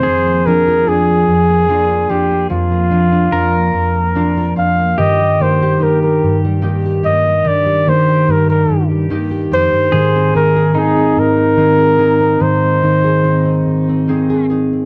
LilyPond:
<<
  \new Staff \with { instrumentName = "Flugelhorn" } { \time 6/8 \key ees \major \tempo 4. = 49 c''8 bes'8 aes'4. g'8 | f'2 r8 f''8 | ees''8 c''8 bes'16 bes'8 r8. ees''8 | d''8 c''8 bes'16 bes'8 r8. c''8~ |
c''8 bes'8 aes'8 bes'4. | c''2 r4 | }
  \new Staff \with { instrumentName = "Pedal steel guitar" } { \time 6/8 \key ees \major aes'2.~ | aes'4 bes'4. r8 | g'2.~ | g'2. |
aes'4 ees'2~ | ees'2~ ees'8 r8 | }
  \new Staff \with { instrumentName = "Harp" } { \time 6/8 \key ees \major f8 bes8 d'4 <bes d' f'>8 f'8 | f8 bes8 d'4 <bes d' f'>8 f'8 | ees8 bes8 ees'4 <bes ees' g'>8 g'8 | ees8 bes8 ees'4 <bes ees' g'>8 g'8 |
ees8 bes8 c'4 <bes c' aes'>8 aes'8 | ees8 bes8 c'4 <bes c' aes'>8 aes'8 | }
  \new Staff \with { instrumentName = "Nylon-string guitar" } { \time 6/8 \key ees \major << { r16 bes16 d'16 f'16 d'16 bes8 bes16 d'16 f'16 d'16 bes16 | r16 bes16 d'16 d'16 d'16 bes8 bes16 d'16 f'16 d'16 bes16 | r16 g16 bes16 g'16 bes16 g8 g16 bes16 g'16 bes16 g16~ | g16 g16 bes16 g'16 bes16 g8 g16 bes16 g'8. |
r16 c'16 ees'16 aes'16 ees'16 c'8 r16 ees'16 aes'16 ees'16 c'16 | r16 c'16 ees'16 aes'16 ees'16 c'8 c'16 ees'16 aes'16 ees'16 c'16 | } \\ { f,8 f8 f,8 f,8 f8 f,8 | f,8 f8 f,8 f,8 f8 f,8 | g,8 ees8 g,8 g,8 ees8 g,8 | g,8 ees8 g,8 g,8 ees8 f,16 g,16 |
aes,8 ees8 ees8 aes,8 ees8 ees8 | aes,8 ees8 ees8 aes,8 ees8 ees8 | } >> }
>>